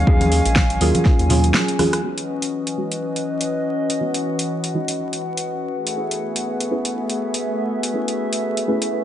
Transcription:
0.00 3.52 F#3 medium
0.00 2.00 G#3 medium
0.00 2.00 C#4 medium
0.00 7.08 C#4 medium
0.00 1.51 F5 medium
0.00 2.00 G#5 medium
0.00 3.50 G#5 medium
0.07 0.42 D#2 loud
0.07 0.78 F#3 medium
0.07 0.78 A#3 medium
0.07 0.78 C#4 medium
0.07 0.78 F4 medium
0.07 0.78 G#4 medium
0.07 kick loud
0.21 closed hi-hat medium
0.21 high conga medium
0.32 open hi-hat loud
0.46 0.78 A#1 loud
0.46 closed hi-hat medium
0.56 kick loud
0.56 snare loud
0.56 high conga medium
0.70 closed hi-hat medium
0.81 0.92 D#2 loud
0.81 1.28 F#3 loud
0.81 1.28 A#3 medium
0.81 1.28 C#4 medium
0.81 1.28 F4 medium
0.81 1.28 G#4 loud
0.81 open hi-hat medium
0.95 closed hi-hat medium
0.95 high conga medium
1.05 kick loud
1.05 snare soft
1.19 1.52 D#2 loud
1.19 closed hi-hat soft
1.29 1.77 F#3 medium
1.29 1.77 A#3 medium
1.29 1.77 C#4 medium
1.29 1.77 F4 medium
1.29 1.77 G#4 loud
1.29 open hi-hat loud
1.29 high conga medium
1.29 low conga medium
1.44 closed hi-hat medium
1.54 snare loud
1.68 closed hi-hat soft
1.79 2.01 F#3 medium
1.79 2.01 A#3 medium
1.79 2.01 C#4 medium
1.79 2.01 F4 medium
1.79 2.01 G#4 medium
1.79 cross-stick medium
1.79 open hi-hat medium
1.79 high conga medium
1.93 cross-stick medium
1.93 closed hi-hat medium
2.04 2.75 E3 medium
2.04 5.69 E3 medium
2.04 2.75 B3 medium
2.04 5.69 C#4 medium
2.04 2.75 D#4 medium
2.04 9.04 F#4 medium
2.04 2.75 F#4 medium
2.04 9.04 B4 medium
2.04 5.69 D#5 medium
2.11 6.68 E3 medium
2.18 6.48 B4 medium
2.18 closed hi-hat soft
2.42 closed hi-hat medium
2.67 5.73 D#5 medium
2.67 closed hi-hat soft
2.77 3.98 E3 medium
2.77 3.98 G#3 medium
2.77 3.98 B3 medium
2.77 3.98 D#4 medium
2.77 3.98 F#4 loud
2.92 closed hi-hat medium
3.15 9.04 F#5 medium
3.15 closed hi-hat soft
3.41 closed hi-hat medium
3.90 closed hi-hat medium
4.00 4.72 E3 medium
4.00 4.72 G#3 medium
4.00 4.72 B3 medium
4.00 4.72 D#4 medium
4.00 4.72 F#4 medium
4.14 closed hi-hat soft
4.39 closed hi-hat medium
4.64 closed hi-hat soft
4.74 5.71 E3 medium
4.74 5.71 G#3 medium
4.74 5.72 B3 medium
4.74 5.72 D#4 medium
4.74 5.72 F#4 loud
4.88 closed hi-hat medium
5.13 closed hi-hat soft
5.37 closed hi-hat medium
5.73 9.04 A3 medium
5.73 9.04 B3 medium
5.73 9.04 G#4 medium
5.73 9.04 E5 medium
5.87 closed hi-hat medium
5.92 9.04 A3 medium
5.97 6.69 A3 medium
5.97 6.69 C#4 medium
5.97 6.69 E4 medium
5.97 6.69 G#4 medium
5.97 6.69 B4 medium
6.11 closed hi-hat soft
6.29 9.04 E5 medium
6.36 closed hi-hat medium
6.60 closed hi-hat soft
6.71 7.91 A3 medium
6.71 7.91 C#4 medium
6.71 7.92 E4 medium
6.71 7.92 G#4 medium
6.71 7.92 B4 loud
6.85 closed hi-hat medium
7.10 closed hi-hat soft
7.34 closed hi-hat medium
7.83 closed hi-hat medium
7.94 8.65 A3 medium
7.94 8.65 C#4 medium
7.94 8.65 E4 medium
7.94 8.65 G#4 medium
7.94 8.65 B4 medium
8.08 closed hi-hat soft
8.33 closed hi-hat medium
8.57 closed hi-hat soft
8.68 9.04 A3 medium
8.68 9.04 C#4 medium
8.68 9.04 E4 medium
8.68 9.04 G#4 medium
8.68 9.04 B4 loud
8.82 closed hi-hat medium

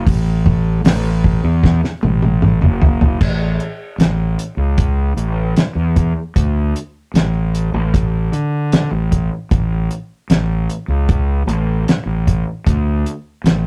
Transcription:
0.06 0.81 A1 loud
0.06 kick loud
0.06 open hi-hat medium
0.46 kick medium
0.84 1.39 A1 medium
0.84 snare loud
0.84 open hi-hat medium
1.24 kick medium
1.44 1.80 E2 loud
1.64 kick medium
1.64 snare medium
1.84 snare medium
2.03 2.58 A1 medium
2.03 high tom medium
2.22 high tom medium
2.42 mid tom medium
2.61 3.16 F#1 medium
2.61 mid tom medium
2.82 floor tom medium
3.01 floor tom medium
3.21 3.57 A1 medium
3.21 kick loud
3.21 crash medium
3.60 closed hi-hat medium
3.98 4.35 A1 medium
3.98 snare loud
3.98 closed hi-hat medium
4.39 closed hi-hat medium
4.57 5.13 C#2 medium
4.78 kick loud
4.78 closed hi-hat medium
5.17 5.53 A1 medium
5.17 closed hi-hat medium
5.57 snare loud
5.57 closed hi-hat medium
5.75 6.12 E2 medium
5.96 kick medium
5.96 closed hi-hat medium
6.36 6.72 D2 medium
6.36 kick medium
6.36 closed hi-hat medium
6.76 closed hi-hat medium
7.14 7.69 A1 medium
7.14 snare loud
7.14 closed hi-hat medium
7.55 closed hi-hat medium
7.74 8.29 A1 medium
7.94 kick loud
7.94 closed hi-hat medium
8.32 8.88 D3 medium
8.32 closed hi-hat medium
8.72 snare loud
8.72 closed hi-hat medium
8.91 9.28 A1 medium
9.12 kick medium
9.12 closed hi-hat medium
9.51 9.87 A1 medium
9.51 kick loud
9.51 closed hi-hat medium
9.91 closed hi-hat medium
10.30 10.66 A1 medium
10.30 snare loud
10.30 closed hi-hat medium
10.70 closed hi-hat medium
10.88 11.44 C#2 medium
11.09 kick loud
11.09 closed hi-hat medium
11.47 11.84 A1 medium
11.47 closed hi-hat medium
11.88 snare loud
11.88 closed hi-hat medium
12.06 12.43 A1 medium
12.27 kick medium
12.27 closed hi-hat medium
12.67 13.03 D2 medium
12.67 kick loud
12.67 closed hi-hat medium
13.06 closed hi-hat medium
13.44 13.67 A1 medium
13.44 snare loud
13.44 closed hi-hat medium

